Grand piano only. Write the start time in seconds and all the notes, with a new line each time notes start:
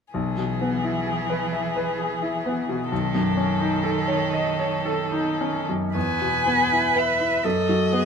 0.14 B1
0.38 B2
0.61 B3
0.84 E4
1.07 G#4
1.30 B4
1.52 E5
1.76 B4
1.98 G#4
2.22 E4
2.46 B3
2.69 B2
2.92 B1
3.15 F#2
3.37 C#4
3.60 D#4
3.84 A4
4.08 C#5
4.33 D#5
4.59 C#5
4.85 A4
5.12 D#4
5.41 C#4
5.69 F#2
5.95 E2
6.21 B2
6.46 B3
6.72 E4
6.96 B4
7.20 E4
7.45 F#2
7.69 F#3
7.92 B3